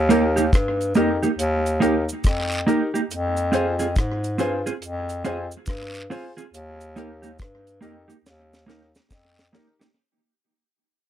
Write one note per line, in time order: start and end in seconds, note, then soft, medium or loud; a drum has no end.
0.00 0.49 D#2 loud
0.09 0.22 A#3 medium
0.09 0.29 D#4 medium
0.09 0.22 D#4 medium
0.09 0.29 G4 medium
0.09 0.23 G4 loud
0.09 0.29 A#4 loud
0.09 closed hi-hat medium
0.09 cabasa medium
0.36 0.43 A#3 medium
0.36 0.43 D#4 medium
0.36 0.42 G4 medium
0.36 cabasa medium
0.53 0.93 G2 medium
0.53 kick loud
0.53 cross-stick loud
0.53 closed hi-hat medium
0.53 cabasa medium
0.81 closed hi-hat soft
0.81 cabasa soft
0.95 1.21 F2 medium
0.95 1.08 A#3 medium
0.95 1.15 D#4 medium
0.95 1.08 D#4 medium
0.95 1.15 G4 medium
0.95 1.08 G4 medium
0.95 1.15 A#4 medium
0.95 closed hi-hat medium
0.95 cabasa soft
1.22 1.29 A#3 medium
1.22 1.28 D#4 medium
1.22 1.28 G4 medium
1.22 1.29 G4 soft
1.22 1.29 A#4 soft
1.22 closed hi-hat soft
1.22 cabasa medium
1.39 1.79 D#2 loud
1.39 closed hi-hat medium
1.39 cabasa medium
1.66 closed hi-hat medium
1.66 cabasa medium
1.80 2.07 D#2 medium
1.80 1.93 A#3 medium
1.80 1.93 D#4 medium
1.80 2.00 D#4 medium
1.80 2.01 G4 medium
1.80 1.94 G4 medium
1.80 2.01 A#4 medium
1.80 closed hi-hat medium
1.80 cabasa medium
2.09 cabasa medium
2.24 2.65 F2 medium
2.24 kick loud
2.24 cross-stick loud
2.24 closed hi-hat medium
2.24 cabasa medium
2.24 long guiro medium
2.52 closed hi-hat medium
2.52 cabasa medium
2.67 2.79 A#3 medium
2.67 2.86 D#4 medium
2.67 2.79 D#4 medium
2.67 2.87 G4 medium
2.67 2.80 G4 medium
2.67 2.87 A#4 loud
2.67 closed hi-hat medium
2.67 cabasa medium
2.94 3.00 A#3 soft
2.94 3.00 D#4 medium
2.94 3.00 G4 medium
2.94 cabasa medium
3.11 3.92 F2 loud
3.11 closed hi-hat medium
3.11 cabasa medium
3.37 closed hi-hat soft
3.37 cabasa medium
3.52 3.65 C4 medium
3.52 3.65 F4 medium
3.52 3.72 F4 medium
3.52 3.72 G#4 medium
3.52 3.65 G#4 medium
3.52 3.73 C5 loud
3.52 closed hi-hat medium
3.52 cabasa medium
3.79 3.86 C4 soft
3.79 3.85 F4 medium
3.79 3.85 G#4 medium
3.79 closed hi-hat soft
3.79 cabasa medium
3.96 4.37 G#2 medium
3.96 kick loud
3.96 cross-stick loud
3.96 closed hi-hat medium
3.96 cabasa medium
4.24 closed hi-hat medium
4.24 cabasa soft
4.38 4.64 G2 medium
4.38 4.51 C4 medium
4.38 4.58 F4 medium
4.38 4.51 F4 medium
4.38 4.58 G#4 medium
4.38 4.52 G#4 medium
4.38 4.58 C5 loud
4.38 closed hi-hat medium
4.38 cabasa medium
4.66 4.72 C4 medium
4.66 4.72 F4 medium
4.66 4.72 G#4 soft
4.66 4.72 G#4 medium
4.66 4.72 C5 soft
4.66 closed hi-hat soft
4.66 cabasa medium
4.82 5.23 F2 loud
4.82 closed hi-hat medium
4.82 cabasa medium
5.09 closed hi-hat medium
5.09 cabasa medium
5.24 5.50 F2 medium
5.24 5.37 C4 medium
5.24 5.37 F4 medium
5.24 5.44 F4 medium
5.24 5.44 G#4 medium
5.24 5.37 G#4 medium
5.24 5.44 C5 loud
5.24 closed hi-hat medium
5.24 cabasa soft
5.51 cabasa medium
5.66 6.08 G2 loud
5.66 kick loud
5.66 cross-stick loud
5.66 closed hi-hat medium
5.66 cabasa medium
5.66 long guiro medium
5.95 closed hi-hat medium
5.95 cabasa medium
6.10 6.22 C4 loud
6.10 6.29 F4 medium
6.10 6.23 F4 loud
6.10 6.30 G#4 medium
6.10 6.23 G#4 loud
6.10 6.30 C5 loud
6.10 open hi-hat medium
6.10 cabasa medium
6.37 6.43 C4 soft
6.37 6.43 F4 medium
6.37 6.43 G#4 medium
6.37 closed hi-hat soft
6.37 cabasa medium
6.53 7.35 D#2 loud
6.53 closed hi-hat medium
6.53 cabasa medium
6.81 closed hi-hat soft
6.81 cabasa medium
6.96 7.08 A#3 medium
6.96 7.08 D#4 medium
6.96 7.15 D#4 medium
6.96 7.16 G4 medium
6.96 7.09 G4 medium
6.96 7.16 A#4 loud
6.96 closed hi-hat medium
6.96 cabasa medium
7.22 7.29 A#3 soft
7.22 7.29 D#4 medium
7.22 7.28 G4 medium
7.22 cabasa medium
7.39 7.80 G2 medium
7.39 kick loud
7.39 cross-stick loud
7.39 closed hi-hat medium
7.39 cabasa medium
7.67 closed hi-hat soft
7.67 cabasa soft
7.81 8.07 F2 medium
7.81 7.93 A#3 medium
7.81 8.01 D#4 medium
7.81 7.94 D#4 medium
7.81 7.94 G4 medium
7.81 8.01 G4 medium
7.81 8.01 A#4 medium
7.81 closed hi-hat medium
7.81 cabasa medium
8.08 8.15 A#3 medium
8.08 8.14 D#4 medium
8.08 8.14 G4 medium
8.08 8.15 G4 soft
8.08 8.15 A#4 soft
8.08 cabasa medium
8.24 8.65 D#2 loud
8.24 snare medium
8.24 cabasa medium
8.53 snare medium
8.53 cabasa medium
8.66 8.93 D#2 medium
8.66 8.79 A#3 medium
8.66 8.86 D#4 medium
8.66 8.80 D#4 loud
8.66 8.87 G4 medium
8.66 8.80 G4 loud
8.66 8.87 A#4 medium
8.66 snare medium
8.66 cabasa soft
8.95 snare medium
8.95 cabasa medium
9.11 9.51 F2 medium
9.11 kick loud
9.11 snare medium
9.11 cabasa medium
9.11 long guiro medium
9.38 snare medium
9.38 cabasa medium
9.52 9.65 A#3 medium
9.52 9.72 D#4 medium
9.52 9.66 D#4 medium
9.52 9.72 G4 medium
9.52 9.66 G4 medium
9.52 9.73 A#4 loud
9.52 snare loud
9.52 cabasa soft
9.79 9.86 A#3 soft
9.79 9.86 D#4 medium
9.79 9.86 G4 medium
9.79 snare medium
9.79 cabasa medium